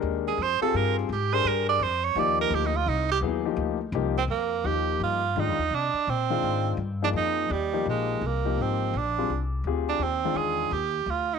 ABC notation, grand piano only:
X:1
M:4/4
L:1/8
Q:"Swing" 1/4=168
K:Fdor
V:1 name="Grand piano"
[A,DGB]2 z [CFGA]3 z [DGAB]- | [DGAB]2 z2 [F,B,EG]3 z | z2 [_G,=B,=EA] [F,_B,_E=G]2 z [F,B,EG] z | z2 [F,B,EG]3 z [E,A,DF] z |
z3 [E,A,DF]3 z [F,B,EA]- | [F,B,EA]2 z [F,B,EG]3 z [F,B,EG]- | [F,B,EG]2 z [G,CFA] z2 [CFGA]2 | z [E,A,DF]3 z4 |]